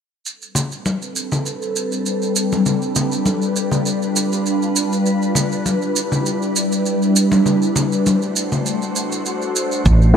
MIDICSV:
0, 0, Header, 1, 4, 480
1, 0, Start_track
1, 0, Key_signature, 0, "minor"
1, 0, Tempo, 600000
1, 206, Time_signature, 4, 2, 24, 8
1, 8134, End_track
2, 0, Start_track
2, 0, Title_t, "Ambient pad"
2, 0, Program_c, 0, 92
2, 200, Note_on_c, 0, 60, 66
2, 202, Note_on_c, 0, 69, 67
2, 202, Note_on_c, 0, 71, 83
2, 203, Note_on_c, 0, 55, 68
2, 203, Note_on_c, 0, 62, 66
2, 2104, Note_off_c, 0, 60, 0
2, 2105, Note_off_c, 0, 69, 0
2, 2105, Note_off_c, 0, 71, 0
2, 2123, Note_on_c, 0, 65, 67
2, 2123, Note_on_c, 0, 71, 76
2, 4012, Note_off_c, 0, 55, 0
2, 4025, Note_off_c, 0, 65, 0
2, 4044, Note_on_c, 0, 64, 67
2, 4045, Note_on_c, 0, 55, 75
2, 5932, Note_off_c, 0, 71, 0
2, 5946, Note_off_c, 0, 55, 0
2, 5946, Note_off_c, 0, 64, 0
2, 5966, Note_on_c, 0, 57, 80
2, 5966, Note_on_c, 0, 72, 80
2, 5967, Note_on_c, 0, 66, 73
2, 7852, Note_off_c, 0, 62, 0
2, 7867, Note_off_c, 0, 57, 0
2, 7867, Note_off_c, 0, 66, 0
2, 7867, Note_off_c, 0, 72, 0
2, 8134, End_track
3, 0, Start_track
3, 0, Title_t, "Fretless electric bass"
3, 0, Program_c, 1, 35
3, 7885, Note_on_c, 1, 33, 87
3, 8134, Note_off_c, 1, 33, 0
3, 8134, End_track
4, 0, Start_track
4, 0, Title_t, "Drums"
4, 207, Note_on_c, 9, 82, 36
4, 287, Note_off_c, 9, 82, 0
4, 338, Note_on_c, 9, 82, 18
4, 418, Note_off_c, 9, 82, 0
4, 440, Note_on_c, 9, 64, 81
4, 446, Note_on_c, 9, 82, 68
4, 520, Note_off_c, 9, 64, 0
4, 526, Note_off_c, 9, 82, 0
4, 576, Note_on_c, 9, 82, 28
4, 656, Note_off_c, 9, 82, 0
4, 686, Note_on_c, 9, 63, 79
4, 686, Note_on_c, 9, 82, 37
4, 766, Note_off_c, 9, 63, 0
4, 766, Note_off_c, 9, 82, 0
4, 817, Note_on_c, 9, 82, 19
4, 897, Note_off_c, 9, 82, 0
4, 927, Note_on_c, 9, 82, 64
4, 1007, Note_off_c, 9, 82, 0
4, 1056, Note_on_c, 9, 64, 78
4, 1057, Note_on_c, 9, 82, 27
4, 1136, Note_off_c, 9, 64, 0
4, 1137, Note_off_c, 9, 82, 0
4, 1167, Note_on_c, 9, 82, 40
4, 1247, Note_off_c, 9, 82, 0
4, 1298, Note_on_c, 9, 82, 20
4, 1378, Note_off_c, 9, 82, 0
4, 1408, Note_on_c, 9, 82, 64
4, 1488, Note_off_c, 9, 82, 0
4, 1537, Note_on_c, 9, 82, 31
4, 1617, Note_off_c, 9, 82, 0
4, 1647, Note_on_c, 9, 82, 37
4, 1727, Note_off_c, 9, 82, 0
4, 1779, Note_on_c, 9, 82, 18
4, 1859, Note_off_c, 9, 82, 0
4, 1888, Note_on_c, 9, 82, 73
4, 1968, Note_off_c, 9, 82, 0
4, 2018, Note_on_c, 9, 82, 28
4, 2021, Note_on_c, 9, 63, 72
4, 2098, Note_off_c, 9, 82, 0
4, 2101, Note_off_c, 9, 63, 0
4, 2127, Note_on_c, 9, 64, 72
4, 2127, Note_on_c, 9, 82, 37
4, 2207, Note_off_c, 9, 64, 0
4, 2207, Note_off_c, 9, 82, 0
4, 2256, Note_on_c, 9, 82, 19
4, 2336, Note_off_c, 9, 82, 0
4, 2366, Note_on_c, 9, 82, 69
4, 2368, Note_on_c, 9, 64, 83
4, 2446, Note_off_c, 9, 82, 0
4, 2448, Note_off_c, 9, 64, 0
4, 2496, Note_on_c, 9, 82, 30
4, 2576, Note_off_c, 9, 82, 0
4, 2605, Note_on_c, 9, 63, 84
4, 2607, Note_on_c, 9, 82, 39
4, 2685, Note_off_c, 9, 63, 0
4, 2687, Note_off_c, 9, 82, 0
4, 2737, Note_on_c, 9, 82, 20
4, 2817, Note_off_c, 9, 82, 0
4, 2848, Note_on_c, 9, 82, 67
4, 2928, Note_off_c, 9, 82, 0
4, 2972, Note_on_c, 9, 64, 77
4, 2977, Note_on_c, 9, 82, 30
4, 3052, Note_off_c, 9, 64, 0
4, 3057, Note_off_c, 9, 82, 0
4, 3087, Note_on_c, 9, 82, 39
4, 3167, Note_off_c, 9, 82, 0
4, 3219, Note_on_c, 9, 82, 22
4, 3299, Note_off_c, 9, 82, 0
4, 3329, Note_on_c, 9, 82, 69
4, 3409, Note_off_c, 9, 82, 0
4, 3459, Note_on_c, 9, 82, 34
4, 3539, Note_off_c, 9, 82, 0
4, 3569, Note_on_c, 9, 82, 40
4, 3649, Note_off_c, 9, 82, 0
4, 3699, Note_on_c, 9, 82, 21
4, 3779, Note_off_c, 9, 82, 0
4, 3808, Note_on_c, 9, 82, 74
4, 3888, Note_off_c, 9, 82, 0
4, 3939, Note_on_c, 9, 82, 32
4, 4019, Note_off_c, 9, 82, 0
4, 4048, Note_on_c, 9, 82, 37
4, 4128, Note_off_c, 9, 82, 0
4, 4178, Note_on_c, 9, 82, 21
4, 4258, Note_off_c, 9, 82, 0
4, 4281, Note_on_c, 9, 64, 77
4, 4289, Note_on_c, 9, 82, 77
4, 4361, Note_off_c, 9, 64, 0
4, 4369, Note_off_c, 9, 82, 0
4, 4418, Note_on_c, 9, 82, 30
4, 4498, Note_off_c, 9, 82, 0
4, 4526, Note_on_c, 9, 63, 75
4, 4527, Note_on_c, 9, 82, 45
4, 4606, Note_off_c, 9, 63, 0
4, 4607, Note_off_c, 9, 82, 0
4, 4656, Note_on_c, 9, 82, 19
4, 4736, Note_off_c, 9, 82, 0
4, 4768, Note_on_c, 9, 82, 72
4, 4848, Note_off_c, 9, 82, 0
4, 4895, Note_on_c, 9, 64, 76
4, 4899, Note_on_c, 9, 82, 31
4, 4975, Note_off_c, 9, 64, 0
4, 4979, Note_off_c, 9, 82, 0
4, 5009, Note_on_c, 9, 82, 43
4, 5089, Note_off_c, 9, 82, 0
4, 5138, Note_on_c, 9, 82, 21
4, 5218, Note_off_c, 9, 82, 0
4, 5248, Note_on_c, 9, 82, 66
4, 5328, Note_off_c, 9, 82, 0
4, 5378, Note_on_c, 9, 82, 34
4, 5458, Note_off_c, 9, 82, 0
4, 5487, Note_on_c, 9, 82, 41
4, 5567, Note_off_c, 9, 82, 0
4, 5619, Note_on_c, 9, 82, 21
4, 5699, Note_off_c, 9, 82, 0
4, 5729, Note_on_c, 9, 82, 80
4, 5809, Note_off_c, 9, 82, 0
4, 5853, Note_on_c, 9, 63, 93
4, 5858, Note_on_c, 9, 82, 31
4, 5933, Note_off_c, 9, 63, 0
4, 5938, Note_off_c, 9, 82, 0
4, 5966, Note_on_c, 9, 64, 73
4, 5970, Note_on_c, 9, 82, 40
4, 6046, Note_off_c, 9, 64, 0
4, 6050, Note_off_c, 9, 82, 0
4, 6099, Note_on_c, 9, 82, 21
4, 6179, Note_off_c, 9, 82, 0
4, 6206, Note_on_c, 9, 64, 90
4, 6209, Note_on_c, 9, 82, 72
4, 6286, Note_off_c, 9, 64, 0
4, 6289, Note_off_c, 9, 82, 0
4, 6339, Note_on_c, 9, 82, 32
4, 6419, Note_off_c, 9, 82, 0
4, 6449, Note_on_c, 9, 82, 44
4, 6452, Note_on_c, 9, 63, 80
4, 6529, Note_off_c, 9, 82, 0
4, 6532, Note_off_c, 9, 63, 0
4, 6577, Note_on_c, 9, 82, 20
4, 6657, Note_off_c, 9, 82, 0
4, 6688, Note_on_c, 9, 82, 70
4, 6768, Note_off_c, 9, 82, 0
4, 6816, Note_on_c, 9, 64, 74
4, 6818, Note_on_c, 9, 82, 31
4, 6896, Note_off_c, 9, 64, 0
4, 6898, Note_off_c, 9, 82, 0
4, 6927, Note_on_c, 9, 82, 44
4, 7007, Note_off_c, 9, 82, 0
4, 7057, Note_on_c, 9, 82, 22
4, 7137, Note_off_c, 9, 82, 0
4, 7166, Note_on_c, 9, 82, 73
4, 7246, Note_off_c, 9, 82, 0
4, 7296, Note_on_c, 9, 82, 36
4, 7376, Note_off_c, 9, 82, 0
4, 7406, Note_on_c, 9, 82, 45
4, 7486, Note_off_c, 9, 82, 0
4, 7536, Note_on_c, 9, 82, 21
4, 7616, Note_off_c, 9, 82, 0
4, 7647, Note_on_c, 9, 82, 75
4, 7727, Note_off_c, 9, 82, 0
4, 7775, Note_on_c, 9, 82, 30
4, 7855, Note_off_c, 9, 82, 0
4, 7885, Note_on_c, 9, 36, 112
4, 7885, Note_on_c, 9, 82, 38
4, 7965, Note_off_c, 9, 36, 0
4, 7965, Note_off_c, 9, 82, 0
4, 8015, Note_on_c, 9, 82, 19
4, 8095, Note_off_c, 9, 82, 0
4, 8134, End_track
0, 0, End_of_file